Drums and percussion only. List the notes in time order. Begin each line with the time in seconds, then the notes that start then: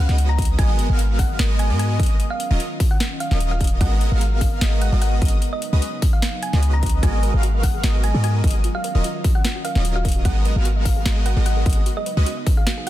0.09 snare
0.18 closed hi-hat
0.38 kick, closed hi-hat
0.42 closed hi-hat
0.45 closed hi-hat
0.59 kick, closed hi-hat
0.79 closed hi-hat
0.99 closed hi-hat
1.19 kick, open hi-hat
1.39 snare, closed hi-hat
1.59 closed hi-hat
1.79 closed hi-hat
2.00 kick, closed hi-hat
2.03 closed hi-hat
2.06 closed hi-hat
2.20 closed hi-hat
2.40 closed hi-hat
2.60 closed hi-hat
2.80 kick, open hi-hat
3.00 snare, closed hi-hat
3.20 closed hi-hat
3.31 snare
3.40 closed hi-hat
3.61 kick, closed hi-hat
3.64 closed hi-hat
3.67 closed hi-hat
3.81 kick, closed hi-hat
4.01 closed hi-hat
4.21 closed hi-hat
4.41 kick, open hi-hat
4.61 snare, closed hi-hat
4.82 closed hi-hat
5.02 closed hi-hat
5.22 kick, closed hi-hat
5.25 closed hi-hat
5.28 closed hi-hat
5.42 closed hi-hat
5.62 closed hi-hat
5.82 closed hi-hat
6.02 kick, open hi-hat
6.22 snare, closed hi-hat
6.43 closed hi-hat
6.53 snare
6.63 closed hi-hat
6.83 kick, closed hi-hat
6.86 closed hi-hat
6.89 closed hi-hat
7.03 kick, closed hi-hat
7.23 closed hi-hat
7.43 closed hi-hat
7.63 kick, open hi-hat
7.84 snare, closed hi-hat
8.04 closed hi-hat
8.24 closed hi-hat
8.44 kick, closed hi-hat
8.47 closed hi-hat
8.51 closed hi-hat
8.64 closed hi-hat
8.84 closed hi-hat
9.04 closed hi-hat
9.24 kick, open hi-hat
9.45 snare, closed hi-hat
9.65 closed hi-hat
9.75 snare
9.85 closed hi-hat
10.05 kick, closed hi-hat
10.09 closed hi-hat
10.12 closed hi-hat
10.25 kick, closed hi-hat
10.45 closed hi-hat
10.65 closed hi-hat
10.85 kick, open hi-hat
11.06 snare, closed hi-hat
11.26 closed hi-hat
11.46 closed hi-hat
11.66 kick, closed hi-hat
11.70 closed hi-hat
11.73 closed hi-hat
11.86 closed hi-hat
12.06 closed hi-hat
12.26 closed hi-hat
12.47 kick, open hi-hat
12.67 snare, closed hi-hat